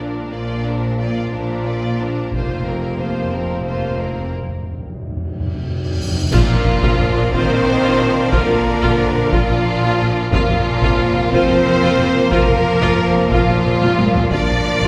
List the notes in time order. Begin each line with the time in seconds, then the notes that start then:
Already playing: A#1 A#2 F3 A#3 D4
0.00 D4 A#4
0.31 A#1 A#2 A#3 F4 D5
0.64 D4 A#4
0.98 A#3 F4 D5
1.31 A#1 A#2 D4 A#4
1.66 A#3 F4 D5
1.99 D4 A#4
2.31 F1 F2 C3 F3 A#3 C4 F4 C5, taiko
2.40 F2
2.55 F2
2.62 F2 A#3 C4 A#4
2.70 F2
2.77 F2
2.98 F2 A#3 F4 C5
3.08 F2
3.16 F2
3.23 F2
3.31 F1 F2 A#3 C4 A#4
3.38 F2
3.45 F2
3.53 F2
3.60 F2
3.65 F2 A#3 F4 C5
3.76 F2
3.83 F2
3.91 F2
3.98 F2 A#3 C4 A#4
4.05 F2
4.12 F2
4.20 F2
4.26 F2
4.32 F2, cymbal swell
4.41 F2
4.49 F2
4.55 F2
4.64 F2
4.72 F2
4.79 F2
4.87 F2
4.94 F2
5.02 F2
5.09 F2
5.16 F2
5.25 F2
5.32 F2
5.40 F2
5.47 F2
5.55 F2
5.62 F2
5.70 F2
5.78 F2
5.85 F2
5.93 F2
6.01 F2
6.08 F2
6.16 F2
6.23 F2
6.31 A#1 A#2 F3 A#3 D4 F4 A#4 D5 F5, concert bass drum, taiko, crash, impact
6.49 A#1 F4
6.82 A#1 F4, taiko
6.99 taiko low-mid
7.15 A#1 D4
7.32 A#1 D#3 C4 F4 C5, taiko
7.49 A#1 F4
7.66 A#1 D4
7.82 A#1 F4
7.99 A#1 F4
8.32 A#1 D3 A#3 F4 A#4, taiko
8.48 A#1 F4
8.82 A#1 F4, taiko
8.99 taiko low-mid
9.15 A#1 D4
9.31 A#1 A#2 F3 F4, taiko
9.49 A#1 F4
9.65 A#1 D4
9.82 A#1 F4
10.00 A#1 F4
10.30 F1 A#2 F3 A#3 F4 A#4 C5 F5, taiko
10.48 F1 F4
10.82 F1 F4, taiko
10.99 taiko low-mid
11.15 F1 C4
11.30 F1 F3 C4 F4 C5, taiko
11.48 F1 F4
11.65 F1 C4
11.82 F1 F4
11.99 F1 F4
12.29 F1 F3 A#3 F4 A#4, taiko
12.48 F1 F4
12.81 F1 F4, taiko
12.98 taiko low-mid
13.15 F1 C4
13.30 F1 A#2 F3 F4, taiko
13.48 F1 F4
13.65 F1 C4
13.81 F1 F4, taiko high
13.98 F1 F4, taiko high
14.15 taiko low
14.30 A#1 A#2 F3 A#3 D4 F4 A#4 D5 F5, taiko
14.48 A#1 F4
14.81 A#1 F4, taiko